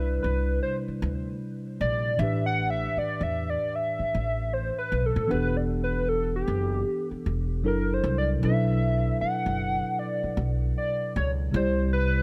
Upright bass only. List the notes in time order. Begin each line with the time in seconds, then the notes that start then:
Already playing: C2
0.24 C2
0.88 muted upright bass stroke
1.02 D2
1.81 A#1
2.19 A1
2.97 muted upright bass stroke
3.21 E2
3.99 muted upright bass stroke
4.15 A1
4.92 B1
5.16 A2
5.31 E1
6.48 F#1
7.11 muted upright bass stroke
7.26 E1
7.65 F#1
8.04 C2
8.43 B1
9.21 muted upright bass stroke
9.46 F#1
10.23 muted upright bass stroke
10.37 B1
11.16 C#2
11.54 C2